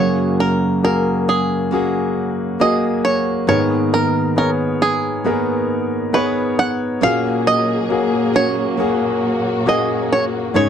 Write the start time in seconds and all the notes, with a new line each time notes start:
Already playing: F#2 C#3 F#3 A#3 C#4 F#4 G#4 C#5
0.00 F#4 G#4
0.40 A#4
0.83 A#3 F#4 G#4 A#4
1.29 G#4
1.71 A#3 C#4 F#4 G#4
2.60 A#3 C#4 F#4 G#4 D#5
3.05 C#5
3.47 G#2 D#3 A#3 B3 D#4 G#4 A#4 C#5
3.52 G#4
3.94 A#4
4.36 B3 G#4 A#4 C#5
4.82 G#4
5.24 A#3 B3 D#4 G#4 A#4
6.13 B3 D#4 G#4 B4 C#5
6.59 F#5
7.01 A#2 F#3 A#3 C#4 F#4 G#4 F5
7.47 D#5
7.90 A#3 F#4 G#4
8.33 C#4 F#4 G#4 C#5
8.77 A#3 C#4 F#4 G#4
9.66 A#3 C#4 F#4 G#4 D#5
10.12 C#5
10.54 G#2 C#3 D#3 G#3 C#4 D#4 G#4 C#5